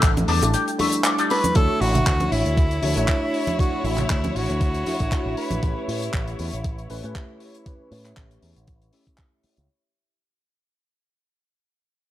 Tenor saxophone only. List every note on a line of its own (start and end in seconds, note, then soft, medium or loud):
1.31 1.58 B4 loud
1.56 1.82 A4 loud
1.81 2.33 F#4 loud
2.32 3.61 E4 medium
3.59 3.86 F#4 medium
3.85 4.10 E4 medium
4.10 4.37 E4 medium
4.36 5.37 F#4 medium
5.38 5.85 B4 medium